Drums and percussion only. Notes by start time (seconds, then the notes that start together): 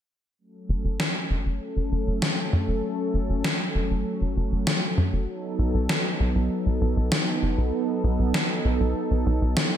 1.00 snare
2.22 snare
3.44 snare
4.67 snare
5.89 snare
7.12 snare
8.34 snare
9.57 snare